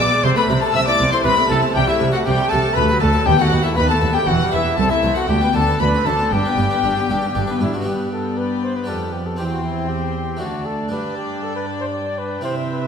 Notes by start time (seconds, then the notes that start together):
Already playing: B3
0.00 B2 D5 D6
0.11 G#3 G#4
0.24 C2 C3 C4 C5 C6
0.36 A3 A4 B4 B5
0.48 C2 C3 C4 C5
0.60 A3 A4 A5
0.73 C2 C3 C4 E5 E6
0.85 A3 E4 D5 D6
0.99 C2 C3 C4 C5
1.12 A3 E4 C5 C6
1.24 C2 C3 C4 B4 C5 B5
1.36 A3 A4
1.49 C2 C3 C4 E4 A4 A5
1.61 A3 C4
1.73 C2 C3 G3 G4 G5
1.86 A3 E4 A4 E5
2.00 C2 C3 G3 G4
2.12 A3 F#4 A4 F#5
2.24 C2 C3 G3 A3 G4 G5
2.38 A3 G4
2.50 C2 C3 G3 A4 A5
2.63 A3 G4
2.75 D2 A3 B4 B5
2.88 F#3 A4
3.00 D2 A3 F#4 A4 A5
3.13 F#3 A4
3.26 D#2 B3 G4 G5
3.38 A3 F#4 A4 F#5
3.50 D#2 B3 B4
3.63 A3 E4 A4 E5
3.76 D#2 B3 B4 B5
3.88 A3 F#4 A4 A5
4.01 D#2 B3 B4
4.13 A3 F#4 G4 G5
4.27 E1 E2 E3 F#4 F#5
4.40 G3 G4
4.52 E1 E2 E3 E4 B4 E5
4.65 G3 G4
4.76 C2 C4 A4 A5
4.89 A3 E4 A4 E5
5.02 C2 C4 C5
5.16 A3 F#4 A4 F#5
5.28 D2 D4 G4 G5
5.41 B3 B4
5.53 D2 D4 A4 D5 A5
5.67 B3 B4
5.79 D2 D4 B4 B5
5.94 C4 F#4
6.05 D2 D4 A4 C5 A5
6.19 C4 F#4
6.32 G1 G2 D4 G4 G5
6.45 B3 B4
6.57 G1 G2 D4 D5
6.71 B3 B4
6.83 G1 G2 D4
6.97 B3 G4
7.09 G1 G2 D4 D5
7.22 B3 G4
7.35 G1 G2 D4 D5
7.47 B3 B4
7.60 G1 G2 D4 E4 G4
7.73 B3 D4 F#4
7.81 B3 D4 G4
7.86 G2 B3 G4 D5 G5
8.13 A4
8.38 B4
8.64 C5
8.76 B4
8.84 B3 D4 G4
8.89 F2 A4
9.12 G4
9.26 A4
9.36 E2 C4 G4 G5 C6
9.52 F#4
9.64 E4
9.89 G4
10.37 A3 D4 F#4
10.41 D2 D4 D5 A5
10.66 A4
10.89 G2 D4 B4
10.93 G5
11.18 G4
11.43 A4
11.56 B4
11.80 C5
11.93 D5
12.19 B4
12.41 C3 C4 E4 C5 E5
12.70 B4